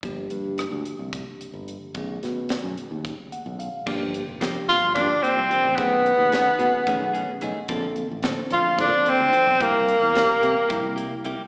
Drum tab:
CC |-------|-------|x------|-------|
HH |xxxxxxx|xxxxxxx|-xxxxxx|xxxxxxx|
SD |--r----|-oo----|--oo---|--o----|
BD |o---o--|o---o--|o---o--|o---o--|

CC |-------|-------|
HH |xxxxxxx|xxxxxxx|
SD |--o----|--o----|
BD |o---o--|o---o--|